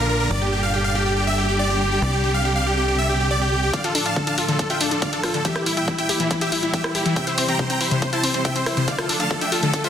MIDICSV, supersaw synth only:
0, 0, Header, 1, 2, 480
1, 0, Start_track
1, 0, Key_signature, -1, "minor"
1, 0, Tempo, 428571
1, 344, Time_signature, 4, 2, 24, 8
1, 11078, End_track
2, 0, Start_track
2, 0, Title_t, "Supersaw synth"
2, 0, Program_c, 0, 81
2, 104, Note_on_c, 0, 70, 60
2, 200, Note_off_c, 0, 70, 0
2, 224, Note_on_c, 0, 70, 66
2, 320, Note_off_c, 0, 70, 0
2, 344, Note_on_c, 0, 74, 98
2, 440, Note_off_c, 0, 74, 0
2, 465, Note_on_c, 0, 67, 60
2, 560, Note_off_c, 0, 67, 0
2, 585, Note_on_c, 0, 67, 66
2, 681, Note_off_c, 0, 67, 0
2, 704, Note_on_c, 0, 77, 82
2, 800, Note_off_c, 0, 77, 0
2, 824, Note_on_c, 0, 67, 60
2, 920, Note_off_c, 0, 67, 0
2, 944, Note_on_c, 0, 77, 83
2, 1040, Note_off_c, 0, 77, 0
2, 1064, Note_on_c, 0, 67, 60
2, 1160, Note_off_c, 0, 67, 0
2, 1184, Note_on_c, 0, 67, 60
2, 1280, Note_off_c, 0, 67, 0
2, 1305, Note_on_c, 0, 67, 62
2, 1400, Note_off_c, 0, 67, 0
2, 1424, Note_on_c, 0, 76, 90
2, 1520, Note_off_c, 0, 76, 0
2, 1545, Note_on_c, 0, 67, 59
2, 1640, Note_off_c, 0, 67, 0
2, 1665, Note_on_c, 0, 67, 58
2, 1760, Note_off_c, 0, 67, 0
2, 1784, Note_on_c, 0, 74, 91
2, 1880, Note_off_c, 0, 74, 0
2, 1904, Note_on_c, 0, 67, 63
2, 2000, Note_off_c, 0, 67, 0
2, 2024, Note_on_c, 0, 67, 59
2, 2120, Note_off_c, 0, 67, 0
2, 2145, Note_on_c, 0, 67, 62
2, 2240, Note_off_c, 0, 67, 0
2, 2264, Note_on_c, 0, 74, 91
2, 2360, Note_off_c, 0, 74, 0
2, 2384, Note_on_c, 0, 67, 61
2, 2480, Note_off_c, 0, 67, 0
2, 2504, Note_on_c, 0, 67, 65
2, 2600, Note_off_c, 0, 67, 0
2, 2623, Note_on_c, 0, 77, 85
2, 2719, Note_off_c, 0, 77, 0
2, 2744, Note_on_c, 0, 67, 63
2, 2840, Note_off_c, 0, 67, 0
2, 2863, Note_on_c, 0, 77, 90
2, 2959, Note_off_c, 0, 77, 0
2, 2984, Note_on_c, 0, 67, 59
2, 3080, Note_off_c, 0, 67, 0
2, 3104, Note_on_c, 0, 67, 65
2, 3200, Note_off_c, 0, 67, 0
2, 3223, Note_on_c, 0, 67, 65
2, 3319, Note_off_c, 0, 67, 0
2, 3343, Note_on_c, 0, 76, 89
2, 3439, Note_off_c, 0, 76, 0
2, 3463, Note_on_c, 0, 67, 61
2, 3560, Note_off_c, 0, 67, 0
2, 3584, Note_on_c, 0, 67, 60
2, 3680, Note_off_c, 0, 67, 0
2, 3703, Note_on_c, 0, 74, 85
2, 3800, Note_off_c, 0, 74, 0
2, 3824, Note_on_c, 0, 67, 63
2, 3920, Note_off_c, 0, 67, 0
2, 3944, Note_on_c, 0, 67, 63
2, 4040, Note_off_c, 0, 67, 0
2, 4064, Note_on_c, 0, 67, 66
2, 4160, Note_off_c, 0, 67, 0
2, 4184, Note_on_c, 0, 74, 70
2, 4184, Note_on_c, 0, 77, 92
2, 4280, Note_off_c, 0, 74, 0
2, 4280, Note_off_c, 0, 77, 0
2, 4304, Note_on_c, 0, 69, 58
2, 4400, Note_off_c, 0, 69, 0
2, 4423, Note_on_c, 0, 69, 66
2, 4520, Note_off_c, 0, 69, 0
2, 4544, Note_on_c, 0, 77, 71
2, 4544, Note_on_c, 0, 81, 85
2, 4640, Note_off_c, 0, 77, 0
2, 4640, Note_off_c, 0, 81, 0
2, 4664, Note_on_c, 0, 69, 63
2, 4760, Note_off_c, 0, 69, 0
2, 4784, Note_on_c, 0, 77, 72
2, 4784, Note_on_c, 0, 81, 86
2, 4880, Note_off_c, 0, 77, 0
2, 4880, Note_off_c, 0, 81, 0
2, 4903, Note_on_c, 0, 69, 60
2, 5000, Note_off_c, 0, 69, 0
2, 5024, Note_on_c, 0, 69, 61
2, 5120, Note_off_c, 0, 69, 0
2, 5144, Note_on_c, 0, 69, 65
2, 5240, Note_off_c, 0, 69, 0
2, 5264, Note_on_c, 0, 76, 77
2, 5264, Note_on_c, 0, 79, 95
2, 5360, Note_off_c, 0, 76, 0
2, 5360, Note_off_c, 0, 79, 0
2, 5384, Note_on_c, 0, 69, 63
2, 5480, Note_off_c, 0, 69, 0
2, 5504, Note_on_c, 0, 69, 61
2, 5600, Note_off_c, 0, 69, 0
2, 5624, Note_on_c, 0, 74, 72
2, 5624, Note_on_c, 0, 77, 85
2, 5720, Note_off_c, 0, 74, 0
2, 5720, Note_off_c, 0, 77, 0
2, 5745, Note_on_c, 0, 69, 62
2, 5840, Note_off_c, 0, 69, 0
2, 5864, Note_on_c, 0, 69, 63
2, 5960, Note_off_c, 0, 69, 0
2, 5984, Note_on_c, 0, 69, 67
2, 6080, Note_off_c, 0, 69, 0
2, 6104, Note_on_c, 0, 67, 76
2, 6104, Note_on_c, 0, 76, 93
2, 6200, Note_off_c, 0, 67, 0
2, 6200, Note_off_c, 0, 76, 0
2, 6223, Note_on_c, 0, 64, 64
2, 6320, Note_off_c, 0, 64, 0
2, 6343, Note_on_c, 0, 64, 67
2, 6439, Note_off_c, 0, 64, 0
2, 6464, Note_on_c, 0, 76, 71
2, 6464, Note_on_c, 0, 79, 86
2, 6560, Note_off_c, 0, 76, 0
2, 6560, Note_off_c, 0, 79, 0
2, 6583, Note_on_c, 0, 64, 63
2, 6680, Note_off_c, 0, 64, 0
2, 6703, Note_on_c, 0, 76, 75
2, 6703, Note_on_c, 0, 79, 90
2, 6799, Note_off_c, 0, 76, 0
2, 6799, Note_off_c, 0, 79, 0
2, 6823, Note_on_c, 0, 64, 61
2, 6919, Note_off_c, 0, 64, 0
2, 6944, Note_on_c, 0, 64, 61
2, 7040, Note_off_c, 0, 64, 0
2, 7063, Note_on_c, 0, 64, 65
2, 7159, Note_off_c, 0, 64, 0
2, 7184, Note_on_c, 0, 67, 74
2, 7184, Note_on_c, 0, 76, 93
2, 7280, Note_off_c, 0, 67, 0
2, 7280, Note_off_c, 0, 76, 0
2, 7303, Note_on_c, 0, 64, 59
2, 7399, Note_off_c, 0, 64, 0
2, 7424, Note_on_c, 0, 64, 62
2, 7520, Note_off_c, 0, 64, 0
2, 7543, Note_on_c, 0, 76, 88
2, 7544, Note_on_c, 0, 67, 74
2, 7640, Note_off_c, 0, 67, 0
2, 7640, Note_off_c, 0, 76, 0
2, 7664, Note_on_c, 0, 64, 64
2, 7760, Note_off_c, 0, 64, 0
2, 7784, Note_on_c, 0, 64, 62
2, 7880, Note_off_c, 0, 64, 0
2, 7904, Note_on_c, 0, 64, 62
2, 8000, Note_off_c, 0, 64, 0
2, 8024, Note_on_c, 0, 76, 74
2, 8024, Note_on_c, 0, 79, 92
2, 8120, Note_off_c, 0, 76, 0
2, 8120, Note_off_c, 0, 79, 0
2, 8144, Note_on_c, 0, 72, 63
2, 8240, Note_off_c, 0, 72, 0
2, 8264, Note_on_c, 0, 72, 68
2, 8360, Note_off_c, 0, 72, 0
2, 8383, Note_on_c, 0, 79, 73
2, 8383, Note_on_c, 0, 82, 87
2, 8480, Note_off_c, 0, 79, 0
2, 8480, Note_off_c, 0, 82, 0
2, 8503, Note_on_c, 0, 72, 62
2, 8599, Note_off_c, 0, 72, 0
2, 8623, Note_on_c, 0, 79, 77
2, 8623, Note_on_c, 0, 82, 85
2, 8720, Note_off_c, 0, 79, 0
2, 8720, Note_off_c, 0, 82, 0
2, 8744, Note_on_c, 0, 72, 62
2, 8840, Note_off_c, 0, 72, 0
2, 8863, Note_on_c, 0, 72, 65
2, 8959, Note_off_c, 0, 72, 0
2, 8983, Note_on_c, 0, 72, 64
2, 9079, Note_off_c, 0, 72, 0
2, 9102, Note_on_c, 0, 72, 78
2, 9103, Note_on_c, 0, 81, 93
2, 9199, Note_off_c, 0, 72, 0
2, 9199, Note_off_c, 0, 81, 0
2, 9224, Note_on_c, 0, 72, 62
2, 9320, Note_off_c, 0, 72, 0
2, 9344, Note_on_c, 0, 72, 63
2, 9440, Note_off_c, 0, 72, 0
2, 9463, Note_on_c, 0, 76, 76
2, 9463, Note_on_c, 0, 79, 88
2, 9559, Note_off_c, 0, 76, 0
2, 9559, Note_off_c, 0, 79, 0
2, 9583, Note_on_c, 0, 72, 67
2, 9679, Note_off_c, 0, 72, 0
2, 9703, Note_on_c, 0, 72, 63
2, 9799, Note_off_c, 0, 72, 0
2, 9823, Note_on_c, 0, 72, 65
2, 9919, Note_off_c, 0, 72, 0
2, 9942, Note_on_c, 0, 74, 72
2, 9942, Note_on_c, 0, 77, 96
2, 10039, Note_off_c, 0, 74, 0
2, 10039, Note_off_c, 0, 77, 0
2, 10064, Note_on_c, 0, 69, 63
2, 10160, Note_off_c, 0, 69, 0
2, 10184, Note_on_c, 0, 69, 65
2, 10280, Note_off_c, 0, 69, 0
2, 10305, Note_on_c, 0, 77, 75
2, 10305, Note_on_c, 0, 81, 89
2, 10400, Note_off_c, 0, 77, 0
2, 10400, Note_off_c, 0, 81, 0
2, 10425, Note_on_c, 0, 69, 63
2, 10520, Note_off_c, 0, 69, 0
2, 10544, Note_on_c, 0, 76, 75
2, 10544, Note_on_c, 0, 79, 87
2, 10640, Note_off_c, 0, 76, 0
2, 10640, Note_off_c, 0, 79, 0
2, 10664, Note_on_c, 0, 69, 60
2, 10760, Note_off_c, 0, 69, 0
2, 10784, Note_on_c, 0, 69, 64
2, 10880, Note_off_c, 0, 69, 0
2, 10905, Note_on_c, 0, 69, 67
2, 11000, Note_off_c, 0, 69, 0
2, 11024, Note_on_c, 0, 72, 79
2, 11024, Note_on_c, 0, 76, 97
2, 11078, Note_off_c, 0, 72, 0
2, 11078, Note_off_c, 0, 76, 0
2, 11078, End_track
0, 0, End_of_file